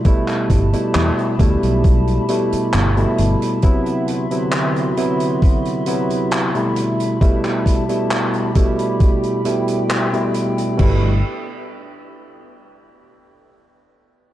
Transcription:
Already playing: ambient pad G4 E5 A5 B5
0.05 tine electric piano B2 G3 A3 E4, kick, closed hi-hat
0.28 clap, closed hi-hat
0.50 fretless electric bass G1, kick, closed hi-hat
0.73 tine electric piano B2 G3 A3 E4, muted fretless electric bass stroke, closed hi-hat
0.94 fretless electric bass E2, clap, closed hi-hat
1.19 closed hi-hat
1.39 fretless electric bass D2, tine electric piano B2 G3 A3 E4, kick, closed hi-hat
1.63 fretless electric bass B1, closed hi-hat
1.84 kick, closed hi-hat
2.07 closed hi-hat
2.28 tine electric piano B2 G3 A3 E4, closed hi-hat
2.52 muted fretless electric bass stroke, closed hi-hat
2.73 fretless electric bass G1, clap, closed hi-hat
2.96 tine electric piano B2 G3 A3 E4, closed hi-hat
3.18 fretless electric bass G1, closed hi-hat
3.42 closed hi-hat
3.62 tine electric piano C3 F#3 B3 E4, ambient pad D3 F#4 C6, kick, closed hi-hat
3.86 closed hi-hat
4.08 closed hi-hat
4.30 tine electric piano C3 F#3 B3 E4, closed hi-hat
4.52 clap, closed hi-hat
4.76 closed hi-hat
4.97 tine electric piano C3 F#3 B3 E4, closed hi-hat
5.20 closed hi-hat
5.42 kick, closed hi-hat
5.65 closed hi-hat
5.86 tine electric piano C3 F#3 B3 E4, closed hi-hat
6.10 closed hi-hat
6.31 clap, closed hi-hat
6.54 tine electric piano B2 G3 A3 E4, closed hi-hat
6.76 ambient pad G4 A5, closed hi-hat
7.00 closed hi-hat
7.20 tine electric piano B2 G3 A3 E4, kick, closed hi-hat
7.44 clap, closed hi-hat
7.66 kick, closed hi-hat
7.88 tine electric piano B2 G3 A3 E4, closed hi-hat
8.11 clap, closed hi-hat
8.34 closed hi-hat
8.55 tine electric piano B2 G3 A3 E4, ambient pad G5, kick, closed hi-hat
8.79 closed hi-hat
9.00 kick, closed hi-hat
9.23 closed hi-hat
9.45 tine electric piano B2 G3 A3 E4, closed hi-hat
9.68 closed hi-hat
9.90 clap, closed hi-hat
10.12 tine electric piano B2 G3 A3 E4, closed hi-hat
10.34 closed hi-hat
10.58 closed hi-hat
10.77 fretless electric bass G1, tine electric piano B2 G3 A3, kick, crash
10.82 tine electric piano E4

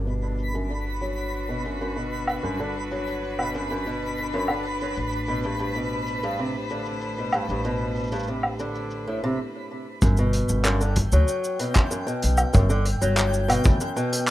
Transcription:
Already playing: upright bass G1, synth texture B5
0.06 steel-string acoustic guitar B2, string quartet D4, cabasa
0.38 cabasa
0.54 steel-string acoustic guitar F#2, cabasa
0.69 steel-string acoustic guitar D3, string quartet B4, cabasa
0.74 string quartet F#4
1.01 steel-string acoustic guitar F#3, cabasa
1.17 cabasa
1.33 cabasa
1.49 steel-string acoustic guitar B2
1.65 steel-string acoustic guitar F#2, cabasa
1.81 steel-string acoustic guitar F#2, cabasa
1.96 steel-string acoustic guitar B2, cabasa
2.27 cabasa, low woodblock
2.43 upright bass G1, steel-string acoustic guitar F#2, cabasa
2.60 steel-string acoustic guitar D3, cabasa
2.91 steel-string acoustic guitar F#3, cabasa
3.07 cabasa
3.24 cabasa
3.39 steel-string acoustic guitar B2, low woodblock
3.54 steel-string acoustic guitar F#2, cabasa
3.70 steel-string acoustic guitar F#2, cabasa
3.86 steel-string acoustic guitar B2, cabasa
4.18 cabasa
4.33 steel-string acoustic guitar F#2, cabasa
4.48 steel-string acoustic guitar D3, low woodblock
4.65 cabasa
4.81 steel-string acoustic guitar F#3, cabasa
4.96 upright bass A1, string quartet A2, cabasa
5.12 cabasa
5.28 steel-string acoustic guitar B2
5.43 steel-string acoustic guitar G2, cabasa
5.59 steel-string acoustic guitar G2, string quartet C5, cabasa
5.75 steel-string acoustic guitar B2, cabasa
6.06 cabasa
6.23 steel-string acoustic guitar G2, cabasa
6.38 steel-string acoustic guitar C3, cabasa
6.70 steel-string acoustic guitar D3, cabasa
6.85 cabasa
7.01 cabasa
7.18 steel-string acoustic guitar B2
7.32 steel-string acoustic guitar G2, cabasa, low woodblock
7.49 upright bass A1, steel-string acoustic guitar G2, cabasa
7.64 steel-string acoustic guitar B2, cabasa
7.95 cabasa
7.99 cabasa
8.03 cabasa
8.07 cabasa
8.11 steel-string acoustic guitar G2, cabasa
8.15 cabasa
8.19 cabasa
8.23 cabasa
8.27 steel-string acoustic guitar C3, cabasa
8.43 low woodblock
8.59 steel-string acoustic guitar D3, cabasa
8.75 cabasa
8.91 cabasa
9.07 steel-string acoustic guitar A2
9.24 steel-string acoustic guitar C3
10.02 upright bass G1, steel-string acoustic guitar F#2, synth texture G5, kick, cabasa
10.17 steel-string acoustic guitar B2, cabasa
10.33 closed hi-hat
10.49 upright bass G1, cabasa
10.65 steel-string acoustic guitar F#2, clap, cabasa
10.81 steel-string acoustic guitar D3, cabasa
10.96 kick, closed hi-hat
11.12 upright bass D2, steel-string acoustic guitar F#3, cabasa
11.28 cabasa
11.44 cabasa
11.59 steel-string acoustic guitar B2, closed hi-hat
11.75 steel-string acoustic guitar F#2, kick, clap, cabasa
11.91 steel-string acoustic guitar F#2, cabasa
12.07 steel-string acoustic guitar B2, cabasa
12.22 upright bass B1, closed hi-hat
12.37 cabasa, low woodblock
12.53 upright bass G1, steel-string acoustic guitar F#2, kick, cabasa
12.70 steel-string acoustic guitar D3, cabasa
12.85 closed hi-hat
13.02 upright bass G1, steel-string acoustic guitar F#3, cabasa
13.17 clap, cabasa
13.33 cabasa
13.48 steel-string acoustic guitar B2, closed hi-hat, low woodblock
13.64 upright bass D2, steel-string acoustic guitar F#2, kick, cabasa
13.81 steel-string acoustic guitar F#2, cabasa
13.96 steel-string acoustic guitar B2, cabasa
14.12 closed hi-hat

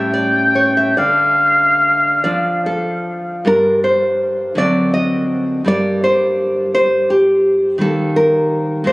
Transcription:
Already playing: nylon-string guitar A2 G3 C#4 E5, oboe G5
0.14 nylon-string guitar D5
0.55 nylon-string guitar C#5
0.77 nylon-string guitar E5
0.97 nylon-string guitar D3 D5, oboe F5
2.24 nylon-string guitar F3 D4 D5
2.66 nylon-string guitar A4
3.45 nylon-string guitar G2 G3 D4 A#4
3.84 nylon-string guitar C5
4.55 nylon-string guitar D3 F#3 C4 D5
4.94 nylon-string guitar D#5
5.65 nylon-string guitar G2 G3 A#3 D5
6.04 nylon-string guitar C5
6.75 nylon-string guitar C5
7.10 nylon-string guitar G4
7.78 nylon-string guitar D#3 G3 A#3 A4
8.16 nylon-string guitar A#4
8.84 nylon-string guitar A#2 G#3 A#3 C5

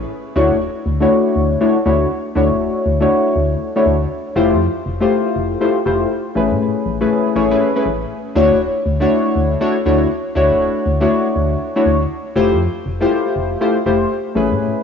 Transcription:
0.35 fm bass D2, synth stab A3 D4 E4 F#4 C#5
0.51 fm bass D1
0.86 fm bass D2
1.00 synth stab A3 D4 E4 F#4 C#5
1.36 fm bass D2
1.61 synth stab A3 D4 E4 F#4 C#5
1.86 fm bass D2, synth stab A3 D4 E4 F#4 C#5
2.35 fm bass D2, synth stab A3 D4 E4 F#4 C#5
2.51 fm bass D1
2.86 fm bass D2
3.00 synth stab A3 D4 E4 F#4 C#5
3.36 fm bass D2
3.76 synth stab A3 D4 E4 F#4 C#5
3.86 fm bass D2
4.35 fm bass F1, synth stab A3 E4 F4 G4 C5
4.51 fm bass F2
4.86 fm bass F1
5.00 synth stab A3 E4 F4 G4 C5
5.36 fm bass F1
5.61 synth stab A3 E4 F4 G4 C5
5.86 fm bass F1, synth stab A3 E4 F4 G4 C5
6.35 fm bass A1, synth stab A3 C#4 E4 G#4 B4
6.51 fm bass A2
6.86 fm bass A1
7.01 synth stab A3 C#4 E4 G#4 B4
7.36 fm bass A1, synth stab A3 C#4 E4 G#4 C#5
7.51 synth stab A3 C#4 E4 G#4 B4
7.76 synth stab A3 C#4 E4 G#4 B4
7.86 fm bass A1
8.36 fm bass D2, synth stab A3 D4 E4 F#4 C#5
8.51 fm bass D1
8.86 fm bass D2
9.00 synth stab A3 D4 E4 F#4 C#5
9.36 fm bass D2
9.61 synth stab A3 D4 E4 F#4 C#5
9.85 fm bass D2, synth stab A3 D4 E4 F#4 C#5
10.35 fm bass D2, synth stab A3 D4 E4 F#4 C#5
10.51 fm bass D1
10.86 fm bass D2
11.00 synth stab A3 D4 E4 F#4 C#5
11.36 fm bass D2
11.76 synth stab A3 D4 E4 F#4 C#5
11.86 fm bass D2
12.35 fm bass F1, synth stab A3 E4 F4 G4 C5
12.51 fm bass F2
12.86 fm bass F1
13.00 synth stab A3 E4 F4 G4 C5
13.36 fm bass F1
13.61 synth stab A3 E4 F4 G4 C5
13.86 fm bass F1, synth stab A3 E4 F4 G4 C5
14.35 fm bass A1, synth stab A3 C#4 E4 G#4 B4
14.51 fm bass A2

